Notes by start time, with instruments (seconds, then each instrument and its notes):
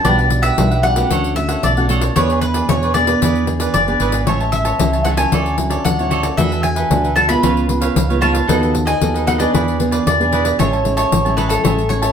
0.04 fingered electric bass B1, nylon-string guitar B2 G3 D4 F#4, cavaquinho D4 G4 B4 F#5, mandolin D5, pandeiro
0.18 cavaquinho G4 B4 F#5, pandeiro
0.30 muted cavaquinho stroke, pandeiro
0.42 cavaquinho G4 B4 F#5, mandolin E5, pandeiro
0.58 fingered electric bass B1, nylon-string guitar B2 G3 D4 F#4, pandeiro
0.71 cavaquinho G4 B4 F#5, pandeiro
0.83 nylon-string guitar G3 D4 F#4, cavaquinho D4 G4 B4 F#5, mandolin F#5, pandeiro
0.96 nylon-string guitar A3 C#4 F#4, cavaquinho G4 B4 F#5, pandeiro
1.10 fingered electric bass D2, nylon-string guitar D3, cavaquinho D4 A4 C#5 F#5, pandeiro
1.24 pandeiro
1.36 nylon-string guitar A3 C#4 F#4, mandolin E5, muted cavaquinho stroke, pandeiro
1.49 cavaquinho A4 C#5 F#5, pandeiro
1.63 fingered electric bass B1, nylon-string guitar A2, mandolin D5, pandeiro
1.77 nylon-string guitar A3 C#4 F#4, cavaquinho A4 C#5 F#5, pandeiro
1.89 nylon-string guitar A3 C#4 F#4, cavaquinho D4 A4 C#5 F#5, pandeiro
2.01 cavaquinho A4 C#5 F#5, pandeiro
2.16 fingered electric bass E2, nylon-string guitar E3 B3 D4 G#4, cavaquinho E4 G#4 B4 D5, mandolin C#5, pandeiro
2.30 cavaquinho G#4 B4 D5, pandeiro
2.41 mandolin B4, muted cavaquinho stroke, pandeiro
2.54 cavaquinho G#4 B4 D5, pandeiro
2.69 fingered electric bass E2, nylon-string guitar B2 B3 D4 G#4, mandolin C#5, pandeiro
2.83 cavaquinho G#4 B4 D5, pandeiro
2.94 nylon-string guitar B3 D4 G#4, cavaquinho E4 G#4 B4 D5, mandolin D5, pandeiro
3.07 nylon-string guitar B3 D4 G#4, cavaquinho G#4 B4 D5, pandeiro
3.21 fingered electric bass E2, nylon-string guitar E3, cavaquinho E4 G#4 B4 D5, pandeiro
3.35 pandeiro
3.47 nylon-string guitar B3 D4 G#4, muted cavaquinho stroke, pandeiro
3.60 cavaquinho G#4 B4 D5, pandeiro
3.74 fingered electric bass F#1, nylon-string guitar B2, mandolin D5, pandeiro
3.87 nylon-string guitar B3 D4 G#4, cavaquinho G#4 B4 D5, pandeiro
4.00 fingered electric bass G#1, cavaquinho E4 G#4 B4 D5, pandeiro
4.12 cavaquinho G#4 B4 D5, pandeiro
4.26 fingered electric bass A1, nylon-string guitar A2 G#3 C#4 E4, cavaquinho G#4 C#5 E5 A5, mandolin C#5, pandeiro
4.40 cavaquinho C#5 E5 A5, pandeiro
4.52 mandolin E5, muted cavaquinho stroke, pandeiro
4.65 cavaquinho C#5 E5 A5, pandeiro
4.79 fingered electric bass C#2, nylon-string guitar E3 G#3 C#4 E4, pandeiro
4.93 cavaquinho C#5 E5 A5, pandeiro
5.05 nylon-string guitar G#3 C#4 E4, cavaquinho G#4 C#5 E5 A5, mandolin F#5, pandeiro
5.17 nylon-string guitar F#3 C#4 E4, cavaquinho C#5 E5 A5, mandolin G#5, pandeiro
5.32 fingered electric bass D2, nylon-string guitar D3, cavaquinho F#4 A4 C#5 D5, pandeiro
5.46 pandeiro
5.58 nylon-string guitar F#3 C#4 E4, muted cavaquinho stroke, pandeiro
5.70 cavaquinho A4 C#5 D5, pandeiro
5.85 fingered electric bass D2, nylon-string guitar A2, mandolin F#5, pandeiro
5.99 nylon-string guitar F#3 C#4 E4, cavaquinho A4 C#5 D5, pandeiro
6.10 cavaquinho F#4 A4 C#5 D5, pandeiro
6.23 cavaquinho A4 C#5 D5, pandeiro
6.37 fingered electric bass E2, nylon-string guitar E3 A3 D4 F#4, cavaquinho D4 A4 B4 E5, mandolin E5, pandeiro
6.52 cavaquinho A4 B4 E5, pandeiro
6.63 mandolin G#5, muted cavaquinho stroke, pandeiro
6.76 cavaquinho A4 B4 E5, pandeiro
6.90 fingered electric bass D2, nylon-string guitar B2 A3 D4 F#4, pandeiro
7.04 cavaquinho A4 B4 E5, pandeiro
7.16 nylon-string guitar A3 D4 F#4, cavaquinho D4 A4 B4 E5, mandolin A5, pandeiro
7.28 nylon-string guitar G#3 B3 F4, cavaquinho A4 B4 E5, mandolin B5, pandeiro
7.42 fingered electric bass C#2, nylon-string guitar C#3, cavaquinho F4 B4 C#5 F5, pandeiro
7.57 pandeiro
7.69 nylon-string guitar G#3 B3 F4, muted cavaquinho stroke, pandeiro
7.81 cavaquinho B4 C#5 F5, pandeiro
7.96 fingered electric bass C#2, nylon-string guitar G#2, pandeiro
8.09 nylon-string guitar G#3 B3 F4, cavaquinho B4 C#5 F5, pandeiro
8.21 nylon-string guitar G#3 B3 F4, cavaquinho F4 B4 C#5 F5, mandolin A5, pandeiro
8.33 cavaquinho B4 C#5 F5, pandeiro
8.47 fingered electric bass D#2, nylon-string guitar D#3 B3 F#4 A4, cavaquinho D#4 A4 B4 D#5, pandeiro
8.61 cavaquinho A4 B4 D#5, pandeiro
8.74 muted cavaquinho stroke, pandeiro
8.86 cavaquinho A4 B4 D#5, mandolin G#5, pandeiro
9.01 fingered electric bass D#2, nylon-string guitar D#3 B3 F#4 A4, pandeiro
9.14 cavaquinho A4 B4 D#5, pandeiro
9.27 nylon-string guitar B3 F#4 A4, cavaquinho D#4 A4 B4 D#5, mandolin F#5, pandeiro
9.38 nylon-string guitar B3 D4 G#4, cavaquinho A4 B4 D#5, mandolin D5, pandeiro
9.54 fingered electric bass E2, nylon-string guitar E3, cavaquinho E4 G#4 B4 D5, pandeiro
9.68 pandeiro
9.80 nylon-string guitar B3 D4 G#4, muted cavaquinho stroke, pandeiro
9.91 cavaquinho G#4 B4 D5, pandeiro
10.07 fingered electric bass E2, nylon-string guitar B2, mandolin D5, pandeiro
10.20 nylon-string guitar B3 D4 G#4, cavaquinho G#4 B4 D5, pandeiro
10.32 cavaquinho E4 G#4 B4 D5, pandeiro
10.44 cavaquinho G#4 B4 D5, pandeiro
10.59 fingered electric bass A1, nylon-string guitar A2 G#3 C#4 E4, cavaquinho G#4 C#5 E5 A5, mandolin C#5, pandeiro
10.73 cavaquinho C#5 E5 A5, pandeiro
10.85 nylon-string guitar G#3 C#4 E4, muted cavaquinho stroke, pandeiro
10.97 mandolin C#5, cavaquinho C#5 E5 A5, pandeiro
11.12 fingered electric bass A1, nylon-string guitar E3, pandeiro
11.25 nylon-string guitar G#3 C#4 E4, cavaquinho C#5 E5 A5, pandeiro
11.37 cavaquinho G#4 C#5 E5 A5, mandolin B4, pandeiro
11.49 mandolin A4, cavaquinho C#5 E5 A5, pandeiro
11.64 fingered electric bass A1, nylon-string guitar A2 G#3 C#4 E4, cavaquinho G#4 C#5 E5 A5, pandeiro
11.78 pandeiro
11.89 nylon-string guitar G#3 C#4 E4, mandolin C#5, muted cavaquinho stroke, pandeiro
12.02 cavaquinho C#5 E5 A5, pandeiro